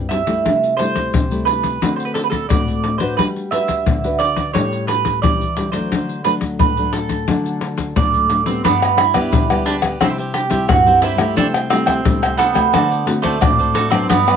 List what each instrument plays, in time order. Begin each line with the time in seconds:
Already playing: nylon-string guitar G2
0.09 nylon-string guitar G3 C4 E4, mandolin E5, pandeiro, maracas
0.26 nylon-string guitar G3 A3 E4, pandeiro, maracas
0.45 nylon-string guitar C3, pandeiro, maracas, surdo
0.63 pandeiro, maracas
0.77 nylon-string guitar G3 A3 E4, mandolin C5, pandeiro
0.95 pandeiro, maracas, surdo
1.14 nylon-string guitar C3, pandeiro, maracas, surdo
1.31 nylon-string guitar G3 A3 E4, pandeiro, maracas
1.45 mandolin B4, pandeiro
1.63 pandeiro, maracas, surdo
1.81 nylon-string guitar D3 A3 C4 F#4, pandeiro, maracas, surdo
1.96 mandolin C5, pandeiro, maracas
2.05 mandolin B4
2.14 mandolin A4, pandeiro
2.24 mandolin B4
2.30 mandolin A4, pandeiro, maracas, surdo
2.49 nylon-string guitar A2 A3 C4 F#4, mandolin D5, pandeiro, maracas, surdo
2.68 pandeiro, maracas, surdo
2.84 pandeiro
2.98 nylon-string guitar D4 F#4 B4, mandolin C5, pandeiro, maracas
3.17 nylon-string guitar G3, mandolin B4, pandeiro, maracas, surdo
3.36 pandeiro, maracas
3.51 nylon-string guitar D4 F#4 B4, mandolin E5, pandeiro, maracas
3.68 pandeiro, maracas, surdo
3.86 nylon-string guitar D3, pandeiro, maracas, surdo
4.04 nylon-string guitar D4 F#4 B4, pandeiro, maracas
4.19 mandolin D5, pandeiro
4.37 pandeiro, maracas, surdo
4.54 nylon-string guitar A2 G3 C#4 E4, mandolin C#5, pandeiro, maracas, surdo
4.73 pandeiro, maracas
4.87 mandolin B4, pandeiro, maracas
5.05 pandeiro, maracas, surdo
5.22 nylon-string guitar E3 G3 C#4 E4, mandolin D5, pandeiro, maracas, surdo
5.41 pandeiro, maracas, surdo
5.56 nylon-string guitar G3 C#4 E4, pandeiro, surdo
5.72 nylon-string guitar F#3 A3 D4, mandolin C5, pandeiro, maracas
5.92 nylon-string guitar D3, pandeiro, maracas, surdo
6.09 pandeiro, maracas
6.24 nylon-string guitar F#3 A3 D4, mandolin B4, pandeiro
6.41 pandeiro, maracas, surdo
6.59 nylon-string guitar A2, mandolin B4, pandeiro, maracas, surdo
6.77 nylon-string guitar F#3 A3 D4, pandeiro, maracas
6.93 mandolin A4, pandeiro
7.09 pandeiro, maracas, surdo
7.28 nylon-string guitar D3 F#3 A3 D4, pandeiro, maracas, surdo
7.46 pandeiro, maracas
7.61 pandeiro
7.78 pandeiro, maracas, surdo
7.96 nylon-string guitar A2 F#3 A3 D4, mandolin D4 D5, pandeiro, maracas, surdo
8.14 pandeiro, maracas, surdo
8.30 nylon-string guitar F#3 A3 D4, pandeiro, maracas
8.46 nylon-string guitar G3 B3 D4, mandolin C4, pandeiro, maracas
8.64 nylon-string guitar G2, mandolin B3, cavaquinho D4 G4 B4 D5, pandeiro, maracas, surdo
8.82 cavaquinho G4 B4 D5, pandeiro, tamborim, maracas
8.97 mandolin E4, muted cavaquinho stroke, pandeiro, tamborim
9.14 nylon-string guitar G3 B3 D4, cavaquinho G4 B4 D5, pandeiro, tamborim, maracas, surdo
9.33 nylon-string guitar D3, pandeiro, maracas, surdo
9.50 nylon-string guitar G3 B3 D4, cavaquinho G4 B4 D5, pandeiro, tamborim, maracas
9.66 cavaquinho D4 G4 B4 D5, mandolin D4, pandeiro
9.82 cavaquinho G4 B4 D5, pandeiro, tamborim, maracas, surdo
10.00 nylon-string guitar C3 G3 C4 E4, mandolin C4, cavaquinho E4 G4 C5 E5, pandeiro, tamborim, maracas, surdo
10.18 cavaquinho G4 C5 E5, pandeiro, maracas
10.34 mandolin G4, muted cavaquinho stroke, pandeiro
10.50 nylon-string guitar G3 C4 E4, cavaquinho G4 C5 E5, pandeiro, maracas, surdo
10.69 nylon-string guitar G2, mandolin F#4, pandeiro, tamborim, maracas, surdo
10.86 nylon-string guitar G3 C4 E4, cavaquinho G4 C5 E5, pandeiro, maracas, surdo
11.02 cavaquinho E4 G4 C5 E5, mandolin E4, pandeiro
11.18 nylon-string guitar G3 A3 E4, cavaquinho G4 C5 E5, pandeiro, tamborim, maracas
11.36 nylon-string guitar C3, mandolin D4, cavaquinho A4 C5 E5 G5, pandeiro, maracas, surdo
11.54 cavaquinho C5 E5 G5, pandeiro, tamborim, maracas
11.70 nylon-string guitar G3 A3 E4, mandolin C4, muted cavaquinho stroke, pandeiro, tamborim
11.86 cavaquinho C5 E5 G5, pandeiro, tamborim, maracas, surdo
12.05 nylon-string guitar C3 G3 A3 E4, pandeiro, maracas, surdo
12.22 cavaquinho C5 E5 G5, pandeiro, tamborim, maracas
12.37 mandolin B3, cavaquinho A4 C5 E5 G5, pandeiro, maracas
12.54 nylon-string guitar A3 F#4, cavaquinho C5 E5 G5, pandeiro, tamborim, maracas, surdo
12.73 nylon-string guitar D3, cavaquinho F#4 A4 C5 D5, pandeiro, tamborim, maracas, surdo
12.90 cavaquinho A4 C5 D5, pandeiro, maracas
13.06 nylon-string guitar A3 C4 F#4, muted cavaquinho stroke, pandeiro
13.22 mandolin A3, cavaquinho A4 C5 D5, pandeiro, maracas, surdo
13.41 nylon-string guitar A2 A3 C4 F#4, mandolin D4, pandeiro, tamborim, maracas, surdo
13.59 cavaquinho A4 C5 D5, pandeiro, maracas, surdo
13.74 cavaquinho F#4 A4 C5 D5, pandeiro, surdo
13.90 nylon-string guitar F#3 B3 D4, mandolin C4, cavaquinho A4 C5 D5, pandeiro, tamborim, maracas
14.09 nylon-string guitar G2, mandolin B3, cavaquinho F#4 G4 B4 D5, pandeiro, maracas, surdo
14.27 nylon-string guitar F#3 B3 D4, cavaquinho G4 B4 D5, pandeiro, tamborim, maracas